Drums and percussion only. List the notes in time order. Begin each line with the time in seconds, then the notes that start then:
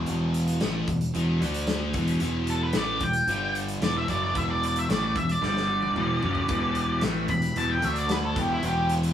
0.06 closed hi-hat
0.34 closed hi-hat
0.48 closed hi-hat
0.60 snare, closed hi-hat
0.88 kick, closed hi-hat
1.01 closed hi-hat
1.15 closed hi-hat
1.42 closed hi-hat
1.54 closed hi-hat
1.67 snare, closed hi-hat
1.94 kick, snare, closed hi-hat
2.08 closed hi-hat
2.20 closed hi-hat
2.47 closed hi-hat
2.73 snare, closed hi-hat
3.00 kick, closed hi-hat
3.13 closed hi-hat
3.28 closed hi-hat
3.55 closed hi-hat
3.68 closed hi-hat
3.82 snare, closed hi-hat
4.08 kick, closed hi-hat
4.35 kick, closed hi-hat
4.63 closed hi-hat
4.76 closed hi-hat
4.90 snare, closed hi-hat
5.16 kick, closed hi-hat
5.29 closed hi-hat
5.43 snare
5.57 snare
5.82 high tom
5.96 mid tom
6.23 floor tom
6.35 floor tom
6.49 kick, closed hi-hat
6.75 closed hi-hat
7.01 snare, closed hi-hat
7.28 kick, closed hi-hat
7.42 closed hi-hat
7.56 closed hi-hat
7.82 closed hi-hat
7.96 closed hi-hat
8.09 snare, closed hi-hat
8.36 kick, snare, closed hi-hat
8.63 closed hi-hat
8.90 closed hi-hat
9.03 closed hi-hat